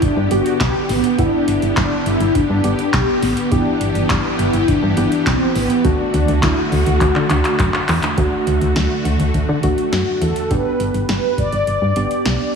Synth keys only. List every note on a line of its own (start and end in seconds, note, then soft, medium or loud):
0.31 0.92 B3 medium
0.31 0.92 D4 medium
0.31 0.92 G4 medium
1.19 2.00 B3 medium
1.19 2.00 D4 medium
1.19 2.00 E4 medium
2.64 3.25 B3 medium
2.64 3.25 D4 medium
2.64 3.25 G4 medium
3.52 4.33 B3 medium
3.52 4.33 E4 medium
3.52 4.33 G4 medium
4.97 5.59 B3 medium
4.97 5.59 E4 medium
4.97 5.59 G4 medium
5.85 6.66 A3 medium
5.85 6.66 D4 medium
5.85 6.66 F#4 medium
7.30 7.91 A3 medium
7.30 7.91 D4 medium
7.30 7.91 F#4 medium
8.18 8.99 A3 medium
8.18 8.99 D4 medium
8.18 8.99 F#4 loud
9.63 10.25 A3 medium
9.63 10.25 D4 medium
9.63 10.25 F#4 loud
10.51 11.32 B3 medium
10.51 11.32 D4 medium
10.51 11.32 G4 medium
11.96 12.55 B3 medium
11.96 12.55 D4 medium
11.96 12.55 G4 medium